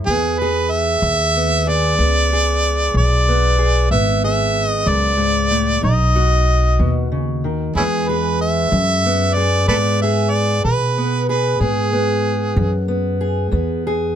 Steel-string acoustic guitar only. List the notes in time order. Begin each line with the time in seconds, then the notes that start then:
Already playing: E4
0.09 E2 B3
0.42 G#4
1.36 B3
1.67 G#4
1.98 E2 B3
2.33 G#4
2.94 E3
3.28 B3
3.59 G#4
3.92 E2 B3
4.24 G#4
4.85 F#2
5.17 G#2
5.50 A2
5.81 B2 D#4
6.16 F#4
6.79 B2
7.12 C#3
7.44 D#3
7.77 E2 E3 G#3 B3
8.09 G#4
8.72 E3
9.06 B3
9.36 G#4
9.69 E2 B3
10.03 G#4
10.65 E3
10.98 B3
11.29 G#4
11.60 E2 B3
11.93 B3
12.57 E3
12.88 B3
13.21 G#4
13.51 E2 B3
13.87 G#4